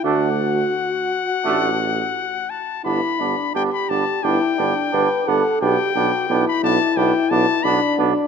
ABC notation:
X:1
M:4/4
L:1/16
Q:1/4=87
K:G
V:1 name="Trumpet"
f12- f2 a2 | b4 g b a2 g6 f2 | g4- g b a2 g2 a2 b2 z2 |]
V:2 name="French horn"
F12- F2 z2 | E2 D2 G4 E2 D2 B2 A2 | G2 F2 E8 D4 |]
V:3 name="Flugelhorn"
D2 z6 D2 z6 | D2 D2 D2 D2 D2 D2 D2 D2 | D2 D2 D2 D2 D2 D2 D2 D2 |]
V:4 name="Trombone"
A,2 z6 A,2 z6 | B,2 B,2 B,2 B,2 B,2 B,2 B,2 B,2 | B,2 B,2 B,2 B,2 B,2 B,2 B,2 B,2 |]
V:5 name="Tuba" clef=bass
D,,4 z4 A,,,4 z4 | G,,,2 G,,,2 G,,,2 G,,,2 G,,,2 G,,,2 G,,,2 G,,,2 | B,,,2 B,,,2 B,,,2 B,,,2 B,,,2 B,,,2 B,,,2 B,,,2 |]